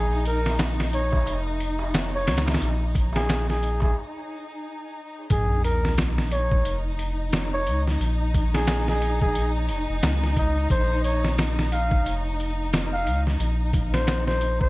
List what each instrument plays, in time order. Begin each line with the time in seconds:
Already playing: sub bass A#1, violin section D#4, muted trumpet G#4
0.13 darbuka tek
0.25 muted trumpet A#4, closed hi-hat
0.46 snare, darbuka tek
0.59 snare, closed hi-hat, darbuka tek
0.80 snare, darbuka tek
0.93 muted trumpet C#5, closed hi-hat
1.12 kick, darbuka tek
1.26 sub bass F1, closed hi-hat, darbuka tek
1.46 darbuka tek
1.60 closed hi-hat
1.79 darbuka tek
1.94 snare, closed hi-hat, darbuka tek
2.13 muted trumpet C#5, darbuka tek
2.27 sub bass C#2, snare, closed hi-hat
2.37 snare, closed hi-hat
2.46 snare, closed hi-hat, darbuka tek
2.54 snare, closed hi-hat
2.61 sub bass A#1, closed hi-hat, darbuka tek
2.80 darbuka tek
2.95 kick, closed hi-hat
3.13 muted trumpet G#4, snare, darbuka tek
3.27 snare, closed hi-hat, darbuka tek
3.47 muted trumpet G#4, snare, darbuka tek
3.63 closed hi-hat
3.80 muted trumpet G#4, kick, darbuka tek
5.30 sub bass A#1, violin section D#4, muted trumpet G#4, kick, closed hi-hat, sub drop
5.64 muted trumpet A#4, closed hi-hat
5.85 snare
5.98 snare, closed hi-hat
6.18 snare
6.32 muted trumpet C#5, closed hi-hat
6.52 kick
6.65 sub bass F1, closed hi-hat
6.99 closed hi-hat
7.33 snare, closed hi-hat
7.53 muted trumpet C#5
7.67 sub bass C#2, closed hi-hat
7.88 snare
8.00 sub bass A#1, closed hi-hat
8.34 kick, closed hi-hat
8.54 muted trumpet G#4, snare
8.67 snare, closed hi-hat
8.88 muted trumpet G#4, snare
9.02 closed hi-hat
9.21 muted trumpet G#4, kick
9.35 closed hi-hat
9.69 sub bass F1, closed hi-hat
9.89 sub bass F1
10.02 sub bass C#2, snare, closed hi-hat
10.23 snare
10.36 muted trumpet D#4, kick, closed hi-hat
10.70 sub bass A#1, muted trumpet C5, kick, closed hi-hat
11.04 muted trumpet C#5, closed hi-hat
11.24 snare
11.38 snare, closed hi-hat
11.59 snare
11.72 muted trumpet F5, closed hi-hat
11.91 kick
12.05 sub bass F1, closed hi-hat
12.40 closed hi-hat
12.73 snare, closed hi-hat
12.93 muted trumpet F5
13.06 sub bass C#2, closed hi-hat
13.27 snare
13.39 sub bass A#1, closed hi-hat
13.73 kick, closed hi-hat
13.93 muted trumpet C5, snare
14.07 snare, closed hi-hat
14.27 muted trumpet C5, snare
14.41 closed hi-hat
14.61 muted trumpet C5, kick